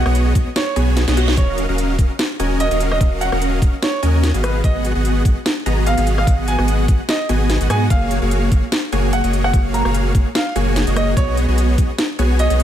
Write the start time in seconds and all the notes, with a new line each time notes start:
Already playing: F#5
0.06 B1 B3 F#4 G#4 C#5 D#5, cross-stick
0.15 closed hi-hat
0.35 B1 B3 F#4 G#4 C#5 D#5, kick, closed hi-hat
0.56 C#5, snare, closed hi-hat, reverse cymbal
0.76 B1 B3 F#4 G#4 C#5 G#5, closed hi-hat
0.97 snare, closed hi-hat
1.08 B1 B3 F#4 G#4 C#5 D#5, snare, closed hi-hat
1.17 F#4, closed hi-hat
1.28 snare
1.37 D#1 C#4 F#4 A#4 C#5 D#5 F5, kick, closed hi-hat
1.58 closed hi-hat
1.69 D#1 C#4 F#4 A#4 D#5 F5
1.78 closed hi-hat
1.99 D#1 C#4 F#4 A#4 D#5 F5, kick, closed hi-hat
2.19 snare, closed hi-hat
2.39 D#1 C#4 F#4 A#4 D#5 G#5, closed hi-hat
2.60 D#5, closed hi-hat
2.71 D#1 C#4 F#4 A#4 D#5 F5, closed hi-hat
2.80 closed hi-hat
2.91 D#5, cross-stick
3.01 D#1 C#4 F#4 A#4 D#5 F5, kick, closed hi-hat
3.21 F#5, closed hi-hat
3.32 D#1 C#4 F#4 A#4 D#5 F5, cross-stick
3.42 closed hi-hat
3.62 D#1 C#4 F#4 A#4 D#5 F5, kick, closed hi-hat
3.83 C#5, snare, closed hi-hat
4.03 D#2 C#4 F#4 A#4 D#5 G#5, closed hi-hat
4.23 snare, closed hi-hat
4.34 G#1 B3 F#4 G#4 D#5 F5, closed hi-hat
4.44 B4, cross-stick, closed hi-hat
4.64 G#1 B3 F#4 G#4 D#5 F#5, kick, closed hi-hat
4.85 closed hi-hat
4.95 G#1 B3 F#4 G#4 D#5 F#5
5.05 closed hi-hat
5.25 G#1 B3 F#4 G#4 D#5 F#5, kick, closed hi-hat
5.46 snare, closed hi-hat
5.66 G#1 B3 F#4 G#4 D#5 A#5, closed hi-hat
5.86 F5, closed hi-hat
5.97 G#1 B3 F#4 G#4 D#5 F5, closed hi-hat
6.07 closed hi-hat
6.18 F5, cross-stick
6.27 G#1 B3 F#4 G#4 D#5 F#5, kick, closed hi-hat
6.48 G#5, closed hi-hat
6.58 G#1 B3 F#4 G#4 D#5 F#5, cross-stick
6.68 closed hi-hat
6.88 G#1 B3 F#4 G#4 D#5 F#5, kick, closed hi-hat
7.09 D#5, snare, closed hi-hat
7.29 G#1 B3 F#4 G#4 D#5 G#5, closed hi-hat
7.50 snare, closed hi-hat
7.61 G#1 B3 F#4 G#4 D#5 F#5, closed hi-hat
7.70 G#2 B3 F#4 G#4 D#5 F#5 G#5, cross-stick, closed hi-hat
7.90 F#1 A#3 F#4 G#4 C#5 F5, kick, closed hi-hat
8.11 closed hi-hat
8.22 F#1 A#3 F#4 G#4 C#5 F5
8.31 closed hi-hat
8.52 F#1 A#3 F#4 G#4 C#5 F5, kick, closed hi-hat
8.72 snare, closed hi-hat
8.92 F#1 A#3 F#4 G#4 C#5 G#5, closed hi-hat
9.13 F#5, closed hi-hat
9.24 F#1 A#3 F#4 G#4 C#5 D#5, closed hi-hat
9.33 closed hi-hat
9.44 F#5, cross-stick
9.53 F#1 A#3 F#4 G#4 C#5 F5, kick, closed hi-hat
9.74 A#5, closed hi-hat
9.85 F#1 A#3 F#4 G#4 C#5 F5, cross-stick
9.94 closed hi-hat
10.15 F#1 A#3 F#4 G#4 C#5 F5, kick, closed hi-hat
10.35 F5, snare, closed hi-hat
10.56 F#1 A#3 F#4 G#4 C#5 G#5, closed hi-hat
10.76 snare, closed hi-hat
10.87 F#1 A#3 F#4 G#4 C#5 D#5, closed hi-hat
10.96 D#5, cross-stick, closed hi-hat
11.17 B1 B3 F#4 G#4 C#5 D#5, kick, closed hi-hat
11.37 closed hi-hat
11.48 B1 B3 F#4 G#4 C#5 D#5
11.58 closed hi-hat
11.78 B1 B3 F#4 G#4 C#5 D#5, kick, closed hi-hat
11.98 snare, closed hi-hat
12.19 B1 B3 F#4 G#4 C#5 G#5, closed hi-hat
12.39 D#5, closed hi-hat
12.50 B1 B3 F#4 G#4 C#5 D#5, closed hi-hat
12.60 closed hi-hat